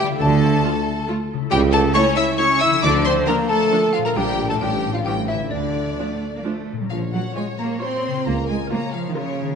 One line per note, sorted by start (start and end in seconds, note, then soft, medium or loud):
0.00 0.13 C#3 medium
0.00 1.44 D3 medium
0.00 0.17 E4 medium
0.00 0.14 A4 medium
0.00 0.20 G5 medium
0.07 1.36 A3 medium
0.11 1.49 F4 medium
0.16 1.46 A4 medium
0.16 1.06 A4 loud
0.20 0.57 D2 loud
0.20 0.58 D3 loud
0.20 1.07 A3 loud
0.20 1.06 A4 medium
0.20 1.06 A5 loud
0.20 1.05 A5 medium
0.64 0.72 A3 medium
0.64 0.72 F4 medium
1.08 1.16 A3 medium
1.08 1.16 F4 medium
1.33 2.76 C#3 medium
1.38 4.11 A3 medium
1.42 2.80 E4 medium
1.47 2.77 A4 medium
1.51 1.88 C#2 loud
1.51 1.88 C#3 loud
1.51 1.61 G3 loud
1.51 1.61 G4 loud
1.51 1.59 G4 loud
1.51 1.59 G5 loud
1.51 1.57 G5 loud
1.51 1.72 G5 loud
1.71 1.83 A3 loud
1.71 1.79 A4 medium
1.71 1.94 A4 loud
1.71 1.81 A5 loud
1.71 1.79 A5 loud
1.71 1.94 A5 loud
1.94 2.03 A3 medium
1.94 2.16 C#4 loud
1.94 2.03 E4 medium
1.94 2.16 C#5 loud
1.94 2.04 C#5 loud
1.94 2.00 C#6 loud
1.94 2.02 C#6 loud
1.94 2.16 C#6 loud
2.16 2.38 E4 loud
2.16 2.39 E5 loud
2.16 2.27 E5 loud
2.16 2.25 E6 loud
2.16 2.23 E6 medium
2.16 2.37 E6 loud
2.38 2.47 A3 medium
2.38 2.61 C#4 loud
2.38 2.47 E4 medium
2.38 2.46 C#5 loud
2.38 2.60 C#5 loud
2.38 2.59 C#6 loud
2.38 2.60 C#6 loud
2.60 2.83 E4 loud
2.60 2.68 E5 loud
2.60 2.71 E5 loud
2.60 2.83 E6 loud
2.60 2.82 E6 loud
2.65 4.09 D3 medium
2.69 4.11 F3 medium
2.73 4.05 D4 medium
2.78 4.16 A4 medium
2.82 3.20 D2 loud
2.82 3.21 D2 medium
2.82 3.20 D3 loud
2.82 3.05 D4 loud
2.82 3.05 D5 loud
2.82 3.06 D5 loud
2.82 2.90 D6 loud
2.82 2.89 D6 loud
2.82 3.04 D6 loud
3.05 3.28 C4 loud
3.05 3.13 C5 medium
3.05 3.28 C5 loud
3.05 3.13 C6 loud
3.05 3.11 C6 medium
3.05 3.26 C6 loud
3.27 3.36 F3 medium
3.27 3.50 A#3 loud
3.27 3.36 D4 medium
3.27 3.35 A#4 loud
3.27 3.39 A#4 medium
3.27 3.35 A#5 loud
3.27 3.48 A#5 medium
3.27 3.51 A#5 loud
3.49 3.94 A3 medium
3.49 3.93 A4 medium
3.49 3.93 A4 loud
3.49 3.91 A5 medium
3.49 3.93 A5 loud
3.49 3.95 A5 medium
3.72 3.80 F3 medium
3.72 3.80 D4 medium
3.93 4.05 F3 medium
3.93 3.99 F4 medium
3.93 4.05 F4 medium
3.93 4.04 F5 medium
3.93 3.98 F5 loud
3.93 4.04 F5 medium
3.98 4.53 A#2 medium
4.02 4.56 G3 medium
4.02 4.16 A#3 medium
4.02 4.18 A#4 medium
4.02 4.15 A#5 medium
4.02 4.10 A#5 medium
4.07 4.50 D4 medium
4.07 4.11 A#4 medium
4.11 4.60 A#4 medium
4.16 4.53 A#1 medium
4.16 4.54 A#2 medium
4.16 4.49 G3 medium
4.16 4.25 G3 medium
4.16 4.25 D4 medium
4.16 4.49 G4 medium
4.16 4.48 G5 medium
4.16 4.49 G5 loud
4.16 4.48 G5 medium
4.42 4.86 A2 medium
4.46 4.91 A3 medium
4.46 4.61 A3 medium
4.46 4.55 A4 medium
4.46 4.54 A5 medium
4.46 4.61 A5 medium
4.46 4.60 A5 medium
4.51 5.03 D4 soft
4.55 5.05 F4 soft
4.55 4.93 G5 medium
4.61 4.98 A1 medium
4.61 4.98 A2 medium
4.61 4.69 F3 medium
4.61 4.94 G3 medium
4.61 4.69 D4 medium
4.61 4.94 G4 medium
4.61 4.94 G5 medium
4.61 4.92 G5 medium
4.87 5.45 A2 medium
4.92 5.05 F3 medium
4.92 5.37 A3 soft
4.92 4.98 F4 medium
4.92 5.06 F4 medium
4.92 4.99 F5 medium
4.92 5.06 F5 medium
4.92 5.05 F5 medium
4.96 5.49 C#4 soft
5.01 5.51 E4 soft
5.01 5.12 G4 medium
5.01 5.10 G5 medium
5.05 5.44 A1 medium
5.05 5.44 A2 medium
5.05 5.14 E3 medium
5.05 5.28 G3 medium
5.05 5.14 C#4 medium
5.05 5.16 G4 medium
5.05 5.28 G5 medium
5.05 5.27 G5 medium
5.27 5.51 E3 medium
5.27 5.36 E4 medium
5.27 5.51 E4 medium
5.27 5.34 E5 medium
5.27 5.50 E5 medium
5.27 5.51 E5 medium
5.33 6.83 D3 medium
5.38 6.86 A3 soft
5.43 6.88 D4 medium
5.47 6.42 D4 medium
5.47 8.15 F4 soft
5.47 6.42 D5 medium
5.47 6.40 D5 medium
5.51 5.91 D2 medium
5.51 6.44 D3 medium
5.51 5.91 D3 medium
5.51 6.42 D4 medium
5.51 6.42 D5 medium
5.99 6.07 F3 medium
5.99 6.31 A3 medium
5.99 6.07 D4 medium
6.34 6.39 A#3 medium
6.44 6.52 F3 soft
6.44 6.79 A3 medium
6.44 6.53 D4 medium
6.72 8.18 A#2 medium
6.77 6.85 G3 soft
6.77 8.11 A#3 medium
6.81 9.55 C#4 medium
6.86 8.20 A#4 medium
6.90 7.26 A#1 medium
6.90 7.01 F3 medium
6.90 6.99 F3 medium
6.90 8.21 C#5 medium
6.90 6.98 F5 medium
7.13 7.23 F#3 medium
7.13 7.22 F#3 medium
7.13 7.36 F#5 medium
7.35 7.45 G#3 medium
7.35 7.44 G#3 medium
7.35 7.69 F4 medium
7.35 7.69 C#5 medium
7.35 7.44 G#5 medium
7.57 7.68 A#3 medium
7.57 7.81 A#3 medium
7.57 7.66 A#5 medium
7.81 8.25 C4 medium
7.81 8.14 F4 medium
7.81 8.14 C#5 medium
7.81 8.25 C6 medium
8.07 9.52 C#3 medium
8.12 9.44 A#3 medium
8.17 9.55 F4 medium
8.21 9.54 A#4 soft
8.21 8.70 A#4 medium
8.26 8.62 C#2 medium
8.26 8.34 A#3 loud
8.26 8.49 A#3 medium
8.26 8.48 A#5 medium
8.48 8.56 G#3 medium
8.48 8.60 G#3 medium
8.48 8.71 G#5 medium
8.71 8.79 A#3 medium
8.71 8.93 A#3 medium
8.71 9.04 F4 medium
8.71 9.04 A#4 medium
8.71 9.14 C#5 medium
8.71 8.93 A#5 medium
8.93 9.08 F3 medium
8.93 9.16 F3 medium
8.93 9.15 F5 medium
9.09 9.15 D#3 medium
9.15 9.55 C#3 medium
9.15 9.55 F4 medium
9.15 9.48 F4 medium
9.15 9.48 A#4 medium
9.15 9.55 C#5 medium
9.41 9.55 D#3 medium
9.46 9.55 A#3 medium
9.50 9.55 F#4 medium